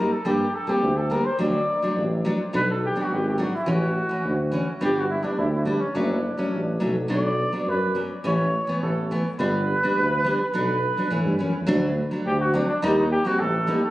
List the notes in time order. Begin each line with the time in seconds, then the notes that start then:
Already playing: G3 A#4
0.00 A#3 D#4
0.12 A4
0.25 G2 G3 A#3 D4 G4
0.55 A4
0.67 G3 A#3 C4 G4
0.83 D2
0.97 A4
1.10 G3 A#3 D4 A#4
1.25 C5
1.39 D2 F#3 A3 D4 D5
1.82 F#3 A3 D4
1.97 A1
2.25 F#3 A3 D4
2.53 B1 F#3 B3 D4 B4
2.71 A4
2.85 G4
2.96 F#3 B3 D4
3.00 F#4
3.10 G#1 G4
3.28 G4
3.38 F#3 B3 D4 F#4
3.55 E4
3.66 A1 E3 A3 C#4 F#4
4.09 E3 A3 C#4
4.25 D2
4.52 E3 A3 C#4
4.81 G1 G3 B3 D4 G4
4.95 F#4
5.10 E4
5.23 G3 B3 D4
5.37 D2 E4
5.52 E4
5.65 G3 B3 D4
5.79 C#4
5.95 F#1 F#3 A3 C#4 D4
6.37 F#3 A3 C#4
6.52 A1
6.80 B1 F#3 A3 C#4
7.08 B1 F#3 B3 D4 D5
7.52 F#3 B3 D4
7.67 F#2 B4
7.95 F#3 B3 C#4
8.24 A1 E3 A3 C#4 C#5
8.67 E3 A3 B3
8.82 A1 A4
9.11 E3 A3 B3
9.39 G1 G3 B3 D4 B4
9.83 G3 B3 D4
9.97 D2
10.24 G3 B3 D4
10.53 B1 F#3 B3 D4 B4
10.97 F#3 B3 D4
11.10 A2 E3 A3 C#4
11.25 G2
11.39 F#2 E3 A3 C#4
11.55 E2
11.67 D2 F#3 A3 D4
12.11 F#3 A3 D4
12.26 D2 G4
12.40 F#4
12.54 F#3 A3 C4 D4
12.68 D4
12.82 D#2 G3 A#3 D#4
12.98 D#4
13.11 G4
13.25 G3 A#3 C4 F#4
13.39 A1 A4
13.67 G3 A#3 D#4